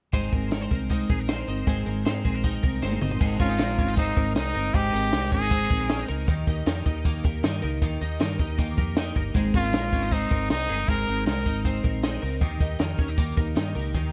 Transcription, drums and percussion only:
0.13 kick, closed hi-hat
0.33 kick, closed hi-hat
0.51 snare, closed hi-hat
0.71 kick, closed hi-hat
0.90 kick, closed hi-hat
1.09 kick, closed hi-hat
1.29 snare, closed hi-hat
1.47 closed hi-hat
1.67 kick, closed hi-hat
1.86 closed hi-hat
2.05 snare, closed hi-hat
2.25 kick, closed hi-hat
2.44 kick, closed hi-hat
2.63 kick, closed hi-hat
2.83 snare
2.92 high tom
3.01 mid tom
3.11 floor tom
3.21 kick, crash
3.40 kick, closed hi-hat
3.58 snare, closed hi-hat
3.78 kick, closed hi-hat
3.97 kick, closed hi-hat
4.16 kick, closed hi-hat
4.36 snare, closed hi-hat
4.55 closed hi-hat
4.74 kick, closed hi-hat
4.94 closed hi-hat
5.12 snare, closed hi-hat
5.32 kick, closed hi-hat
5.51 kick, closed hi-hat
5.70 kick, closed hi-hat
5.90 snare, closed hi-hat
6.08 closed hi-hat
6.28 kick, closed hi-hat
6.47 kick, closed hi-hat
6.66 snare, closed hi-hat
6.86 kick, closed hi-hat
7.05 kick, closed hi-hat
7.25 kick, closed hi-hat
7.44 snare, closed hi-hat
7.62 closed hi-hat
7.82 kick, closed hi-hat
8.01 closed hi-hat
8.20 snare, closed hi-hat
8.39 kick, closed hi-hat
8.59 kick, closed hi-hat
8.78 kick, closed hi-hat
8.97 snare, closed hi-hat
9.15 kick, closed hi-hat
9.35 kick, closed hi-hat
9.54 kick, closed hi-hat
9.73 snare, closed hi-hat
9.93 kick, closed hi-hat
10.12 kick, closed hi-hat
10.31 kick, closed hi-hat
10.50 snare, closed hi-hat
10.69 open hi-hat
10.88 kick, closed hi-hat
11.08 closed hi-hat
11.26 snare, closed hi-hat
11.46 kick, closed hi-hat
11.65 kick, closed hi-hat
11.84 kick, closed hi-hat
12.03 snare, closed hi-hat
12.22 open hi-hat
12.41 kick, closed hi-hat
12.60 kick, closed hi-hat
12.79 snare, closed hi-hat
12.98 kick, closed hi-hat
13.18 kick, closed hi-hat
13.37 kick, closed hi-hat
13.57 snare, closed hi-hat
13.75 open hi-hat
13.95 kick, closed hi-hat

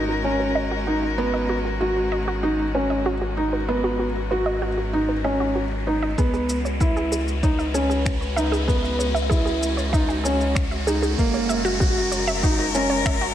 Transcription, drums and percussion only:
0.25 mid tom
1.03 mid tom
1.81 mid tom
2.59 mid tom
3.37 mid tom
4.16 mid tom
4.93 mid tom
5.71 mid tom
6.18 kick, shaker
6.34 mid tom, shaker
6.49 shaker
6.65 shaker
6.80 kick, shaker
6.97 shaker
7.12 mid tom, shaker
7.28 shaker
7.43 kick, shaker
7.59 shaker
7.75 shaker
7.91 mid tom, shaker
8.06 finger snap, kick, shaker
8.22 shaker
8.38 shaker
8.53 shaker
8.68 kick, shaker
8.85 shaker
9.00 shaker
9.16 shaker
9.31 kick, shaker
9.47 mid tom, shaker
9.63 shaker
9.79 shaker
9.93 kick, shaker
10.10 shaker
10.25 mid tom, shaker
10.41 shaker
10.56 finger snap, kick, shaker
10.72 shaker
10.87 shaker
11.03 mid tom, shaker
11.18 kick, shaker
11.34 shaker
11.50 shaker
11.65 shaker
11.81 kick, shaker
11.97 shaker
12.12 shaker
12.28 shaker
12.43 kick, shaker
12.59 mid tom, shaker
12.75 shaker
12.90 shaker
13.05 finger snap, kick, shaker
13.22 shaker

